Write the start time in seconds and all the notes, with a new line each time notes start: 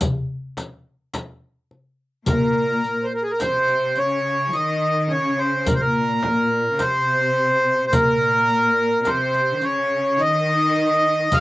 0.01 riq, darbuka dum, frame drum
0.57 riq, darbuka tek, frame drum
1.14 riq, darbuka tek, frame drum
1.71 darbuka ka
2.26 A#2 A#4, riq, darbuka dum, frame drum
2.57 darbuka ka
2.84 riq, darbuka ka
3.03 C5
3.14 A#4
3.23 G#4
3.31 A#4
3.40 C3 C5, riq, darbuka tek, frame drum
3.68 riq, darbuka ka
3.95 C#3 C#5, riq, darbuka ka
4.48 F3
4.53 D#3 D#5, riq, darbuka ka
5.10 C#3 C#5, darbuka ka
5.38 C5
5.66 A#2 A#4, riq, darbuka dum, frame drum
5.75 C5
5.81 A#2 A#4
6.23 darbuka tek, frame drum
6.72 C#3
6.79 C3 C5, riq, darbuka tek, frame drum
7.37 darbuka ka
7.87 A#2 C5
7.93 A#4, riq, frame drum, darbuka dum
8.21 riq
8.49 riq
9.05 C3 C5, riq, darbuka tek, frame drum
9.34 riq, darbuka ka
9.54 D#3
9.61 C#3 C#5, riq, darbuka ka
10.17 D#3 D#5, riq, darbuka ka
10.76 riq, darbuka ka
11.32 F3 F5, riq, frame drum, darbuka dum